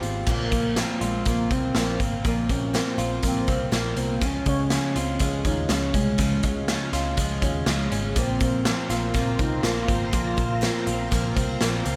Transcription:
Already playing: twelve-string acoustic guitar G#3 C4 F4 G4, clean electric guitar G#3 C4 G4
0.02 picked electric bass G#1, clean electric guitar F4, closed hi-hat
0.27 picked electric bass A#1, twelve-string acoustic guitar A#2 F3 A#3 C4 F4, soft synth lead A#3, kick, crash
0.52 picked electric bass A#1, twelve-string acoustic guitar A#3 C4 F4, kick, closed hi-hat
0.76 twelve-string acoustic guitar A#2 F3 A#3 C4 F4, snare, closed hi-hat
1.01 picked electric bass A#1, soft synth lead G#3, twelve-string acoustic guitar A#3 C4 F4, closed hi-hat
1.25 picked electric bass A#1, twelve-string acoustic guitar F3 A#3 C4, soft synth lead A#3, kick, closed hi-hat
1.30 twelve-string acoustic guitar F4
1.51 picked electric bass C2, soft synth lead C4, twelve-string acoustic guitar C4 F4, kick, closed hi-hat
1.55 twelve-string acoustic guitar A#3
1.75 picked electric bass A#1, twelve-string acoustic guitar A#2 F3 A#3 C4 F4, snare, closed hi-hat
2.00 picked electric bass G#1, soft synth lead A#3, twelve-string acoustic guitar A#3 C4 F4, kick, closed hi-hat
2.25 picked electric bass A#1, twelve-string acoustic guitar A#2 F3 A#3 C4 F4, soft synth lead A#3, kick, closed hi-hat
2.49 picked electric bass A#1, twelve-string acoustic guitar A#3 C4 F4, soft synth lead C#4, kick, closed hi-hat
2.74 twelve-string acoustic guitar A#2 F3 A#3 C4 F4, soft synth lead C4, snare, closed hi-hat
2.98 picked electric bass A#1, twelve-string acoustic guitar A#3 C4 F4, closed hi-hat
3.23 picked electric bass A#1, twelve-string acoustic guitar F3 A#3 C4 F4, kick, closed hi-hat
3.27 soft synth lead C4
3.47 picked electric bass C2, twelve-string acoustic guitar A#3 C4 F4, kick, closed hi-hat
3.72 picked electric bass A#1, twelve-string acoustic guitar A#2 F3 A#3 C4 F4, soft synth lead A#3, snare, closed hi-hat
3.96 picked electric bass C2, twelve-string acoustic guitar A#3 C4 F4, closed hi-hat
4.21 picked electric bass C#2, twelve-string acoustic guitar C#3 F3 G#3 C#4 F4, soft synth lead C#4, kick, closed hi-hat
4.46 picked electric bass C#2, twelve-string acoustic guitar G#3 C#4 F4, soft synth lead C#4, kick, closed hi-hat
4.70 twelve-string acoustic guitar C#3 F3 G#3 C#4 F4, snare, closed hi-hat
4.96 picked electric bass C#2, twelve-string acoustic guitar G#3 C#4 F4, soft synth lead C4, closed hi-hat
5.19 picked electric bass C#2, twelve-string acoustic guitar F3 G#3 C#4 F4, soft synth lead C#4, kick, closed hi-hat
5.45 picked electric bass D#2, twelve-string acoustic guitar G#3 C#4 F4, soft synth lead D#4, kick, closed hi-hat
5.69 picked electric bass C#2, twelve-string acoustic guitar C#3 F3 G#3 C#4 F4, soft synth lead C#4, snare, closed hi-hat
5.94 picked electric bass C2, soft synth lead G#3, twelve-string acoustic guitar G#3 C#4 F4, kick, closed hi-hat
6.18 picked electric bass C#2, twelve-string acoustic guitar C#3 F3 G#3 C#4 F4, kick, closed hi-hat
6.43 picked electric bass C#2, twelve-string acoustic guitar G#3 C#4 F4, kick, closed hi-hat
6.68 twelve-string acoustic guitar C#3 F3 G#3 C#4 F4, snare, closed hi-hat
6.93 picked electric bass C#2, twelve-string acoustic guitar G#3 C#4 F4, snare, closed hi-hat
7.17 picked electric bass C#2, twelve-string acoustic guitar F3 G#3 C#4, kick, closed hi-hat
7.21 twelve-string acoustic guitar F4
7.42 picked electric bass D#2, twelve-string acoustic guitar G#3 C#4 F4, kick, closed hi-hat
7.66 picked electric bass C#2, twelve-string acoustic guitar C#3 F3 G#3 C#4 F4, soft synth lead G#3, snare, closed hi-hat
7.91 picked electric bass G#1, twelve-string acoustic guitar G#3 C#4 F4, closed hi-hat
8.15 picked electric bass A#1, twelve-string acoustic guitar A#2 F3 A#3 C4 F4, soft synth lead C4, string machine F4 C5 A#5, kick, closed hi-hat
8.40 picked electric bass A#1, twelve-string acoustic guitar A#3 C4 F4, soft synth lead C4, kick, closed hi-hat
8.65 twelve-string acoustic guitar A#2 F3 A#3 C4 F4, snare, closed hi-hat
8.89 picked electric bass A#1, twelve-string acoustic guitar A#3 C4 F4, soft synth lead A#3, snare, closed hi-hat
9.14 picked electric bass A#1, twelve-string acoustic guitar F3 A#3 C4 F4, soft synth lead C4, kick, closed hi-hat
9.39 picked electric bass C2, twelve-string acoustic guitar A#3 C4 F4, soft synth lead D#4, kick, closed hi-hat
9.63 picked electric bass A#1, twelve-string acoustic guitar A#2 F3 A#3 C4 F4, soft synth lead F4, snare, closed hi-hat
9.88 picked electric bass G#1, twelve-string acoustic guitar A#3 C4 F4, kick, closed hi-hat
10.13 picked electric bass A#1, twelve-string acoustic guitar A#2 F3 A#3 C4 F4, soft synth lead F4, kick, closed hi-hat
10.37 picked electric bass A#1, twelve-string acoustic guitar A#3 C4 F4, kick, closed hi-hat
10.61 twelve-string acoustic guitar A#2 F3 A#3 C4 F4, snare, closed hi-hat
10.87 picked electric bass A#1, twelve-string acoustic guitar A#3 C4 F4, closed hi-hat
11.11 picked electric bass A#1, twelve-string acoustic guitar F3 A#3 C4 F4, kick, closed hi-hat
11.37 picked electric bass C2, twelve-string acoustic guitar A#3 C4 F4, kick, closed hi-hat
11.61 picked electric bass A#1, twelve-string acoustic guitar A#2 F3 A#3 C4 F4, snare, closed hi-hat
11.85 picked electric bass C#2, twelve-string acoustic guitar A#3 C4 F4, closed hi-hat

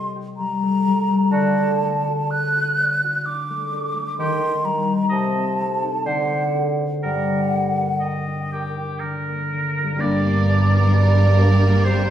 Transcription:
Already playing: harp C3 G3 A3 C4 G4 C5 D#5, flute C6
0.16 harp G4
0.37 harp G3, flute A#5
0.63 harp A3
0.87 harp G3
1.08 harp A3
1.31 bassoon D3, harp D3, oboe F#4, flute A5
1.82 harp A3
2.08 harp F#4
2.30 harp D5, flute F#6
2.56 harp F#4
2.80 harp D5
3.04 harp F#4
3.26 harp D4, flute D6
3.50 harp A3
3.74 harp D4
3.95 harp A3
4.19 harp D#3, bassoon D#3, oboe G4, flute C6
4.42 harp D#4
4.64 harp G3, flute A#5
4.88 harp G4
5.09 bassoon C3, harp C3, oboe D#5, flute A5
5.35 harp C4
5.60 harp A3
5.83 harp D#4
6.06 bassoon D3, harp D3, oboe C5, flute F#5
6.30 harp A3
6.54 harp D4
6.78 harp C5
7.03 harp G2, bassoon G3, oboe A#4, flute F#5
7.28 harp D3
7.53 harp A#3
7.78 harp D4
8.00 harp A#4, oboe D#5, flute G5
8.28 harp D4
8.52 oboe G4, harp A#4
8.77 harp D4
9.00 harp D3, oboe A#4
9.28 harp A#3
9.53 harp D3
9.77 harp A#3
9.83 harp G2
9.87 harp A#3
9.92 harp D4
9.96 cello section G2, violin section G3, french horn section A#3 D4, harp G4
10.00 double bass section G1, viola section G3, violin section A#4, oboe D5
10.24 violin section A#3
10.48 violin section D4
10.72 violin section A#3
10.93 violin section G3, bassoon D4, oboe D5
11.17 violin section A#3
11.39 bassoon A#3, violin section D4
11.63 violin section A#3
11.85 violin section G3, bassoon C4, oboe C5

